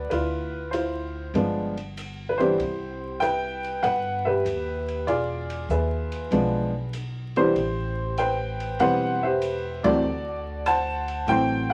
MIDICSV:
0, 0, Header, 1, 4, 480
1, 0, Start_track
1, 0, Tempo, 620476
1, 87, Time_signature, 4, 2, 24, 8
1, 9075, End_track
2, 0, Start_track
2, 0, Title_t, "Upright piano"
2, 0, Program_c, 0, 0
2, 0, Note_on_c, 0, 74, 88
2, 77, Note_on_c, 0, 71, 65
2, 92, Note_on_c, 0, 64, 50
2, 94, Note_on_c, 0, 65, 47
2, 105, Note_off_c, 0, 74, 0
2, 549, Note_on_c, 0, 72, 57
2, 553, Note_off_c, 0, 65, 0
2, 557, Note_off_c, 0, 64, 0
2, 565, Note_on_c, 0, 65, 41
2, 569, Note_on_c, 0, 64, 44
2, 577, Note_off_c, 0, 71, 0
2, 1007, Note_off_c, 0, 72, 0
2, 1015, Note_off_c, 0, 65, 0
2, 1017, Note_off_c, 0, 64, 0
2, 1043, Note_on_c, 0, 53, 56
2, 1044, Note_on_c, 0, 56, 53
2, 1048, Note_on_c, 0, 59, 53
2, 1051, Note_on_c, 0, 62, 60
2, 1341, Note_off_c, 0, 53, 0
2, 1342, Note_off_c, 0, 56, 0
2, 1344, Note_off_c, 0, 59, 0
2, 1345, Note_off_c, 0, 62, 0
2, 1773, Note_on_c, 0, 71, 65
2, 1839, Note_on_c, 0, 72, 75
2, 1849, Note_on_c, 0, 52, 62
2, 1851, Note_on_c, 0, 64, 57
2, 1851, Note_on_c, 0, 67, 56
2, 1852, Note_off_c, 0, 71, 0
2, 1856, Note_on_c, 0, 55, 48
2, 1860, Note_on_c, 0, 59, 57
2, 1862, Note_on_c, 0, 62, 61
2, 1989, Note_off_c, 0, 52, 0
2, 1992, Note_off_c, 0, 55, 0
2, 1994, Note_off_c, 0, 59, 0
2, 1995, Note_off_c, 0, 62, 0
2, 2477, Note_on_c, 0, 79, 93
2, 2491, Note_on_c, 0, 71, 58
2, 2491, Note_on_c, 0, 76, 60
2, 2498, Note_off_c, 0, 72, 0
2, 2782, Note_off_c, 0, 64, 0
2, 2783, Note_off_c, 0, 67, 0
2, 2959, Note_off_c, 0, 71, 0
2, 2960, Note_on_c, 0, 78, 87
2, 2971, Note_on_c, 0, 71, 70
2, 2977, Note_off_c, 0, 79, 0
2, 3269, Note_off_c, 0, 78, 0
2, 3277, Note_off_c, 0, 76, 0
2, 3288, Note_on_c, 0, 76, 79
2, 3290, Note_off_c, 0, 71, 0
2, 3294, Note_on_c, 0, 67, 57
2, 3301, Note_on_c, 0, 71, 63
2, 3895, Note_off_c, 0, 67, 0
2, 3899, Note_off_c, 0, 71, 0
2, 3923, Note_on_c, 0, 74, 77
2, 3929, Note_on_c, 0, 68, 54
2, 3931, Note_on_c, 0, 65, 55
2, 3942, Note_off_c, 0, 76, 0
2, 4405, Note_off_c, 0, 68, 0
2, 4412, Note_on_c, 0, 76, 63
2, 4415, Note_on_c, 0, 71, 46
2, 4416, Note_on_c, 0, 68, 46
2, 4419, Note_off_c, 0, 74, 0
2, 4858, Note_off_c, 0, 65, 0
2, 4859, Note_off_c, 0, 76, 0
2, 4888, Note_on_c, 0, 53, 63
2, 4889, Note_on_c, 0, 56, 61
2, 4891, Note_on_c, 0, 59, 53
2, 4893, Note_on_c, 0, 62, 67
2, 5183, Note_off_c, 0, 53, 0
2, 5184, Note_off_c, 0, 56, 0
2, 5185, Note_off_c, 0, 59, 0
2, 5186, Note_off_c, 0, 62, 0
2, 5340, Note_off_c, 0, 68, 0
2, 5340, Note_off_c, 0, 71, 0
2, 5695, Note_on_c, 0, 52, 61
2, 5696, Note_on_c, 0, 55, 55
2, 5699, Note_on_c, 0, 59, 61
2, 5701, Note_on_c, 0, 72, 89
2, 5704, Note_on_c, 0, 62, 64
2, 5711, Note_on_c, 0, 64, 54
2, 5714, Note_on_c, 0, 67, 55
2, 5831, Note_off_c, 0, 52, 0
2, 5832, Note_off_c, 0, 55, 0
2, 5833, Note_off_c, 0, 59, 0
2, 5836, Note_off_c, 0, 62, 0
2, 6326, Note_off_c, 0, 72, 0
2, 6331, Note_on_c, 0, 79, 79
2, 6337, Note_on_c, 0, 71, 56
2, 6337, Note_on_c, 0, 72, 57
2, 6632, Note_off_c, 0, 64, 0
2, 6633, Note_off_c, 0, 67, 0
2, 6803, Note_on_c, 0, 52, 55
2, 6807, Note_on_c, 0, 55, 52
2, 6808, Note_off_c, 0, 71, 0
2, 6808, Note_off_c, 0, 72, 0
2, 6808, Note_on_c, 0, 59, 51
2, 6809, Note_on_c, 0, 78, 97
2, 6813, Note_on_c, 0, 60, 64
2, 6819, Note_on_c, 0, 71, 70
2, 6819, Note_on_c, 0, 72, 68
2, 6823, Note_off_c, 0, 79, 0
2, 7100, Note_off_c, 0, 52, 0
2, 7102, Note_off_c, 0, 55, 0
2, 7103, Note_off_c, 0, 59, 0
2, 7105, Note_off_c, 0, 60, 0
2, 7137, Note_off_c, 0, 72, 0
2, 7139, Note_on_c, 0, 76, 78
2, 7146, Note_off_c, 0, 78, 0
2, 7147, Note_on_c, 0, 67, 56
2, 7149, Note_on_c, 0, 72, 54
2, 7606, Note_on_c, 0, 52, 70
2, 7611, Note_on_c, 0, 54, 67
2, 7613, Note_on_c, 0, 57, 64
2, 7614, Note_on_c, 0, 74, 102
2, 7615, Note_on_c, 0, 60, 76
2, 7627, Note_on_c, 0, 66, 62
2, 7627, Note_on_c, 0, 69, 59
2, 7631, Note_off_c, 0, 76, 0
2, 7741, Note_off_c, 0, 67, 0
2, 7741, Note_off_c, 0, 71, 0
2, 7742, Note_off_c, 0, 72, 0
2, 7746, Note_off_c, 0, 52, 0
2, 7749, Note_off_c, 0, 54, 0
2, 7750, Note_off_c, 0, 57, 0
2, 7751, Note_off_c, 0, 60, 0
2, 8214, Note_off_c, 0, 74, 0
2, 8248, Note_on_c, 0, 81, 79
2, 8257, Note_on_c, 0, 72, 58
2, 8257, Note_on_c, 0, 78, 59
2, 8549, Note_off_c, 0, 66, 0
2, 8549, Note_off_c, 0, 69, 0
2, 8696, Note_off_c, 0, 81, 0
2, 8721, Note_on_c, 0, 52, 58
2, 8722, Note_on_c, 0, 54, 59
2, 8726, Note_on_c, 0, 57, 59
2, 8728, Note_on_c, 0, 60, 77
2, 8733, Note_on_c, 0, 79, 98
2, 8738, Note_off_c, 0, 72, 0
2, 8750, Note_on_c, 0, 72, 70
2, 9019, Note_off_c, 0, 52, 0
2, 9019, Note_off_c, 0, 54, 0
2, 9021, Note_off_c, 0, 57, 0
2, 9022, Note_off_c, 0, 60, 0
2, 9040, Note_off_c, 0, 78, 0
2, 9051, Note_on_c, 0, 78, 83
2, 9053, Note_off_c, 0, 72, 0
2, 9068, Note_off_c, 0, 79, 0
2, 9075, Note_off_c, 0, 78, 0
2, 9075, End_track
3, 0, Start_track
3, 0, Title_t, "Upright bass"
3, 0, Program_c, 1, 32
3, 85, Note_on_c, 1, 38, 69
3, 1016, Note_off_c, 1, 38, 0
3, 1036, Note_on_c, 1, 31, 80
3, 1971, Note_off_c, 1, 31, 0
3, 1996, Note_on_c, 1, 36, 79
3, 2931, Note_off_c, 1, 36, 0
3, 2962, Note_on_c, 1, 31, 84
3, 3414, Note_off_c, 1, 31, 0
3, 3441, Note_on_c, 1, 39, 71
3, 3893, Note_off_c, 1, 39, 0
3, 3923, Note_on_c, 1, 28, 68
3, 4374, Note_off_c, 1, 28, 0
3, 4397, Note_on_c, 1, 39, 69
3, 4851, Note_off_c, 1, 39, 0
3, 4880, Note_on_c, 1, 35, 81
3, 5812, Note_off_c, 1, 35, 0
3, 5843, Note_on_c, 1, 33, 75
3, 6773, Note_off_c, 1, 33, 0
3, 6801, Note_on_c, 1, 28, 80
3, 7581, Note_off_c, 1, 28, 0
3, 7611, Note_on_c, 1, 37, 59
3, 7750, Note_off_c, 1, 37, 0
3, 7755, Note_on_c, 1, 38, 73
3, 8689, Note_off_c, 1, 38, 0
3, 8715, Note_on_c, 1, 33, 76
3, 9075, Note_off_c, 1, 33, 0
3, 9075, End_track
4, 0, Start_track
4, 0, Title_t, "Drums"
4, 85, Note_on_c, 9, 51, 58
4, 162, Note_off_c, 9, 51, 0
4, 564, Note_on_c, 9, 44, 50
4, 564, Note_on_c, 9, 51, 58
4, 641, Note_off_c, 9, 44, 0
4, 641, Note_off_c, 9, 51, 0
4, 1044, Note_on_c, 9, 51, 47
4, 1122, Note_off_c, 9, 51, 0
4, 1372, Note_on_c, 9, 51, 42
4, 1449, Note_off_c, 9, 51, 0
4, 1526, Note_on_c, 9, 44, 53
4, 1526, Note_on_c, 9, 51, 67
4, 1604, Note_off_c, 9, 44, 0
4, 1604, Note_off_c, 9, 51, 0
4, 1859, Note_on_c, 9, 51, 40
4, 1936, Note_off_c, 9, 51, 0
4, 2008, Note_on_c, 9, 51, 55
4, 2086, Note_off_c, 9, 51, 0
4, 2492, Note_on_c, 9, 44, 50
4, 2492, Note_on_c, 9, 51, 58
4, 2570, Note_off_c, 9, 44, 0
4, 2570, Note_off_c, 9, 51, 0
4, 2818, Note_on_c, 9, 51, 42
4, 2896, Note_off_c, 9, 51, 0
4, 2967, Note_on_c, 9, 51, 56
4, 3045, Note_off_c, 9, 51, 0
4, 3448, Note_on_c, 9, 44, 45
4, 3448, Note_on_c, 9, 51, 59
4, 3525, Note_off_c, 9, 44, 0
4, 3525, Note_off_c, 9, 51, 0
4, 3778, Note_on_c, 9, 51, 38
4, 3856, Note_off_c, 9, 51, 0
4, 3929, Note_on_c, 9, 51, 52
4, 4006, Note_off_c, 9, 51, 0
4, 4254, Note_on_c, 9, 51, 50
4, 4331, Note_off_c, 9, 51, 0
4, 4405, Note_on_c, 9, 44, 52
4, 4483, Note_off_c, 9, 44, 0
4, 4733, Note_on_c, 9, 51, 48
4, 4811, Note_off_c, 9, 51, 0
4, 4886, Note_on_c, 9, 51, 53
4, 4963, Note_off_c, 9, 51, 0
4, 5362, Note_on_c, 9, 44, 56
4, 5362, Note_on_c, 9, 51, 64
4, 5439, Note_off_c, 9, 44, 0
4, 5439, Note_off_c, 9, 51, 0
4, 5694, Note_on_c, 9, 51, 39
4, 5771, Note_off_c, 9, 51, 0
4, 5847, Note_on_c, 9, 51, 51
4, 5924, Note_off_c, 9, 51, 0
4, 6325, Note_on_c, 9, 44, 44
4, 6325, Note_on_c, 9, 51, 58
4, 6402, Note_off_c, 9, 44, 0
4, 6402, Note_off_c, 9, 51, 0
4, 6654, Note_on_c, 9, 51, 46
4, 6731, Note_off_c, 9, 51, 0
4, 6804, Note_on_c, 9, 51, 63
4, 6882, Note_off_c, 9, 51, 0
4, 7284, Note_on_c, 9, 44, 51
4, 7284, Note_on_c, 9, 51, 69
4, 7361, Note_off_c, 9, 44, 0
4, 7361, Note_off_c, 9, 51, 0
4, 7614, Note_on_c, 9, 51, 63
4, 7616, Note_on_c, 9, 36, 75
4, 7691, Note_off_c, 9, 51, 0
4, 7694, Note_off_c, 9, 36, 0
4, 8245, Note_on_c, 9, 44, 58
4, 8245, Note_on_c, 9, 51, 67
4, 8323, Note_off_c, 9, 44, 0
4, 8323, Note_off_c, 9, 51, 0
4, 8571, Note_on_c, 9, 51, 47
4, 8648, Note_off_c, 9, 51, 0
4, 8724, Note_on_c, 9, 51, 53
4, 8801, Note_off_c, 9, 51, 0
4, 9075, End_track
0, 0, End_of_file